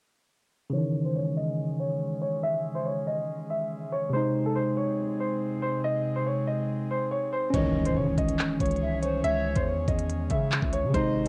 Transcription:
0.70 C#3 E3 G#3 C#5
0.77 D#3
1.05 C5
1.16 C#5
1.37 D#5
1.80 C#5
2.21 C#5
2.43 E5
2.75 C5
2.85 C#5
3.07 D#5
3.50 E5
3.92 C#5
4.10 C3 G#3 C5
4.16 D#4
4.46 A4
4.56 C5
4.77 C#5
5.20 C5
5.62 C5
5.84 D#5
6.16 C5
6.26 C#5
6.47 D#5
6.91 C5
7.11 C#5
7.33 C5
7.50 C#2 E3 G#3 C#4 C#5 D#5, kick, closed hi-hat, impact
7.57 D#3
7.85 C5, closed hi-hat
7.96 C#3 C#5
8.07 C#2
8.18 C#2 D#5, kick, closed hi-hat
8.28 closed hi-hat
8.39 clap
8.60 C#2 C#5, kick, closed hi-hat
8.66 closed hi-hat
8.71 closed hi-hat
8.76 closed hi-hat
8.82 E5
8.92 C2
9.02 C5 C#5, closed hi-hat
9.24 C#2 C#5 E5, closed hi-hat
9.55 E2 C5, kick, closed hi-hat
9.66 C#5
9.88 E2 D#5, kick, closed hi-hat
9.99 closed hi-hat
10.10 closed hi-hat
10.30 C#3 E5, kick, closed hi-hat
10.52 clap
10.62 C#2, kick
10.73 C#5, closed hi-hat
10.84 C#3
10.90 C3 G#3
10.94 G#1 C3 G#3 D#4 C5 D#5, kick, closed hi-hat

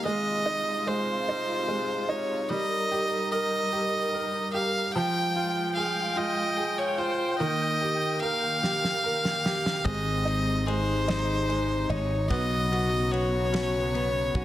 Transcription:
Already playing: D#3 A#3 D#4
0.05 C3 G#3 F4 D#5
0.46 D#4
0.87 G#3 C5
1.28 D#4
1.68 G#3
2.09 D#4 C#5
2.49 G3 D#4 A#4 D#5
2.91 G4
3.32 A#4 D#5
3.73 G4
4.14 A#4
4.54 G4 F5
4.94 F3 G#3 F4 G5
5.36 F4
5.75 G#4 F5
6.16 F4 D#5
6.57 G#4
6.78 C#5
6.98 F4 C5
7.39 D#3 A#3 D#5
7.82 G4
8.20 A#4 F5
8.63 G4, snare
8.85 snare
9.04 A#4
9.25 snare
9.45 G4, snare
9.66 snare
9.85 G#1 C3 G#3 C4 D#5, kick, ride
10.25 C4 D#4, ride
10.65 G#3 D#4 G#4 C5, ride
11.08 D#4, snare, ride
11.49 G#3, ride
11.90 G#1 D#4 C#5, ride
12.29 B1 C#3 F#3 B3 F#4 D#5, kick, ride
12.72 B3 F#4, ride
13.12 B3 F#4 C#5, ride
13.53 C#4 F#4, snare, ride
13.94 B3, ride
14.35 B1 C#4 F#4, kick, ride

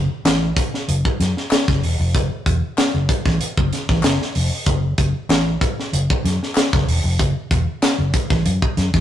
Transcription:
0.25 A1, snare, clap, closed hi-hat
0.57 kick, closed hi-hat
0.74 snare
0.88 F#1, closed hi-hat
1.05 kick
1.20 F#2, snare, closed hi-hat
1.37 snare
1.51 snare, clap, closed hi-hat
1.68 F#1, kick, snare
1.83 E1, open hi-hat
1.99 F1
2.15 F#1, kick, closed hi-hat
2.46 E1, kick, closed hi-hat
2.78 snare, clap, closed hi-hat
2.94 F#1
3.09 kick, closed hi-hat
3.26 A1, kick, snare
3.41 muted fingered electric bass stroke, closed hi-hat
3.57 F#1, kick
3.73 snare, closed hi-hat
3.89 A1, kick, snare
4.03 F#1, snare, clap, closed hi-hat
4.22 snare
4.35 F1, open hi-hat
4.66 F#1, kick, closed hi-hat
4.98 F#1, kick, closed hi-hat
5.29 A1, snare, clap, closed hi-hat
5.61 kick, closed hi-hat
5.80 snare
5.93 F#1, closed hi-hat
6.10 kick
6.25 F#2, snare, closed hi-hat
6.43 snare
6.55 snare, clap, closed hi-hat
6.73 F#1, kick, snare
6.87 E1, open hi-hat
7.04 F1
7.19 F#1, kick, closed hi-hat
7.51 E1, kick, closed hi-hat
7.83 snare, clap, closed hi-hat
7.98 F#1
8.14 kick, closed hi-hat
8.30 A1, kick, snare
8.46 F#2, closed hi-hat
8.62 kick
8.77 F#2, snare, closed hi-hat
8.94 E2, kick, snare

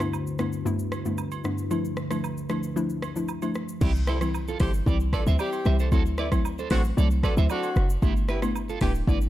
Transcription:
Already playing: G2 D3 E4 B4
0.00 G2 A3 B3 D4 E4, cross-stick, high agogo, shaker
0.13 low woodblock, shaker
0.27 shaker
0.39 G2 A3 B3 D4 E4, cross-stick, high agogo, shaker
0.53 shaker
0.65 G2 A3 B3 D4 E4, shaker
0.79 shaker
0.92 cross-stick, high agogo, shaker
1.05 G2 A3 B3 D4 E4, shaker
1.18 low woodblock, shaker
1.32 high agogo, shaker
1.44 G2 A3 B3 D4 E4, cross-stick, shaker
1.58 shaker
1.71 D2 F3 A3 D4 E4 E5, high agogo, shaker
1.85 shaker
1.97 cross-stick, shaker
2.11 F3 A3 D4 E4, cross-stick, high agogo, shaker
2.24 low woodblock, shaker
2.37 shaker
2.49 F3 A3 D4 E4, cross-stick, high agogo, shaker
2.63 shaker
2.76 F3 A3 D4 E4, shaker
2.90 shaker
3.02 cross-stick, high agogo, shaker
3.16 F3 A3 D4 E4, shaker
3.28 low woodblock, shaker
3.42 F3 A3 D4 E4, high agogo, shaker
3.55 cross-stick, shaker
3.69 shaker
3.81 C2 E3 G3 C4 E4 G4, kick, crash, high agogo, shaker
3.95 shaker
4.07 G3 C4 E4 A4 C5, cross-stick, shaker
4.21 E3 G3 C4 E4, cross-stick, high agogo, shaker
4.34 low woodblock, shaker
4.48 F4 A4, shaker
4.60 G1 E3 G3 C4 E4 G4 A4 C5, kick, cross-stick, open hi-hat, high agogo, shaker
4.74 shaker
4.86 C2 E3 G3 C4 E4 G4 D5, kick, shaker
5.00 shaker
5.13 D4 F4 A4 B4 D5, kick, cross-stick, high agogo, shaker
5.26 D2 E3 G3 C4 E4 C5 E5, shaker
5.39 C4 E4 G4 D5, low woodblock, shaker
5.53 high agogo, shaker
5.65 C2 E3 G3 C4 E4 C5 E5, cross-stick, shaker
5.79 A4 C5, shaker
5.92 D2 F#3 A3 C4 E4 F#4 A4, kick, high agogo, shaker
6.06 shaker
6.18 A3 C4 E4 B4 D5, cross-stick, shaker
6.32 F#3 A3 C4 E4, kick, cross-stick, high agogo, shaker
6.45 low woodblock, shaker
6.58 A4 C5, shaker
6.70 A1 F#3 A3 C4 D4 E4 F#4 A4 C5, kick, cross-stick, open hi-hat, high agogo, shaker
6.84 shaker
6.97 C2 F#3 A3 C4 E4 A4 D5, shaker
7.11 shaker
7.23 D4 F#4 A4 B4 D5, kick, cross-stick, high agogo, shaker
7.37 D2 F#3 A3 C4 E4 C5 E5, shaker
7.49 C4 D4 F#4 A4 D5, low woodblock, shaker
7.63 high agogo, shaker
7.76 F#1, cross-stick, shaker
7.90 shaker
8.02 G1 A3 B3 D4 E4 G4, kick, high agogo, shaker
8.17 shaker
8.28 G3 B3 E4 G4 B4, cross-stick, shaker
8.42 A3 B3 D4 E4, cross-stick, high agogo, shaker
8.55 low woodblock, shaker
8.69 F4 A4, shaker
8.81 D1 A3 B3 D4 E4 G4 B4, kick, cross-stick, open hi-hat, high agogo, shaker
8.95 shaker
9.07 G1 A3 B3 D4 E4 B4 D5, kick, shaker
9.21 shaker

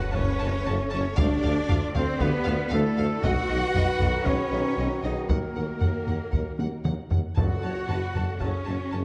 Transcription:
Already playing: C#3 A3 F#4 A4 B4 C#5 F#5
0.12 F#1 F#2 C#4 C#5 A5, taiko
0.39 F#1 F#2 A5
0.65 F#1 F#2 A4 A5
0.90 F#1 F#2 C#4 C#5 A5
1.16 D2 D3 D4 G4 D5 F5, taiko
1.43 D2 F5
1.68 D2 F4 F5, taiko low
1.94 D2 C4 A4 C5 F5, taiko low
2.19 D2 B3 G4 B4 F5, taiko
2.44 D2 F4 F5
2.69 D2 A3 E4 A4 F5
2.97 D2 F5
3.21 B1 F#3 D#4 F#4 B4 D#5 F#5, taiko
3.26 D#3
3.49 B1 D#5
3.74 B1 B4 D#5, taiko low
4.00 B1 A4 D#5, taiko low
4.25 B1 C#4 G#4 C#5 D#5, taiko
4.51 B1 D#5
4.77 B1 F#4 D#5
5.03 B1 D#4 G#4 D#5
5.27 D#2 A#3 A#4 F#5, taiko
5.55 D#2 F#5
5.80 D#2 F#5, taiko low
6.07 D#2 F#5, taiko low
6.32 D#2 F#5, taiko
6.59 D#2 F#5, taiko high
6.84 D#2 F#5, taiko mid
7.10 D#2 F#5, taiko low
7.35 F#1 F#2 C#3 F#3 F#4 A4 F#5 A5, taiko
7.62 F#1 F#2 C#5 A5
7.89 F#1 F#2 B4 A5, taiko low
8.15 F#1 F#2 A4 A5, taiko low
8.39 F#1 F#2 C#3 F#3 C#4 F#4 G#4 A4 C#5 A5, taiko
8.65 F#1 F#2 F#4 A5
8.91 F#1 F#2 G#4 A5

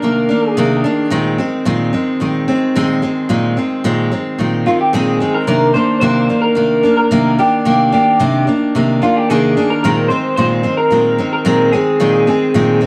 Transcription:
Already playing: A#4
0.02 C3 D#3 A#3 D4
0.29 D#3 A#3 D4
0.49 G#4
0.57 C3 D#3 A#3 D4
0.84 D#3 A#3 D4
1.10 A#2 D#3 G#3 C4
1.38 D#3 G#3 C4
1.65 A#2 D#3 G#3 C4
1.93 D#3 G#3 C4
2.20 A#2 D#3 G#3 C4
2.48 D#3 G#3 C4
2.75 A#2 D#3 G#3 C4
3.02 D#3 G#3 C4
3.29 A#2 D#3 G#3 C4
3.57 D#3 G#3 C4
3.84 A#2 D#3 G#3 C4
4.12 D#3 G#3 C4
4.39 A#2 D#3 G#3 C4
4.66 D#3 G#3 C4 F4
4.81 G4
4.93 A#2 D#3 G#3 C4 G#4
5.20 D#3 G#3 C4
5.34 A#4
5.47 C3 D#3 A#3 D4 A#4
5.74 D#3 A#3 D4 C5
6.00 C3 D#3 A#3 D4 C5
6.29 D#3 A#3 D4
6.42 A#4
6.55 C3 D#3 A#3 D4
6.83 D#3 A#3 D4
6.97 A#4
7.11 C3 D#3 A#3 D4
7.38 D#3 A#3 D4 G4
7.65 C3 D#3 A#3 D4
7.92 D#3 A#3 D4 G4
8.19 C3 D#3 A#3 D4
8.47 D#3 A#3 D4
8.75 C3 D#3 A#3 D4
9.02 D#3 A#3 D4 F4
9.16 G4
9.29 C3 D#3 A#3 D4 G#4
9.57 D#3 A#3 D4
9.70 A#4
9.83 A#2 D#3 G#3 C4 A#4
10.08 D#3 G#3 C4 C5
10.36 A#2 D#3 G#3 C4 C5
10.63 D#3 G#3 C4
10.77 A#4
10.91 A#2 D#3 G#3 C4
11.18 D#3 G#3 C4
11.33 A#4
11.45 A#2 D#3 G#3 C4
11.72 D#3 G#3 C4 G#4
12.00 A#2 D#3 G#3 C4
12.27 D#3 G#3 C4 G#4
12.54 A#2 D#3 G#3 C4
12.81 D#3 G#3 C4

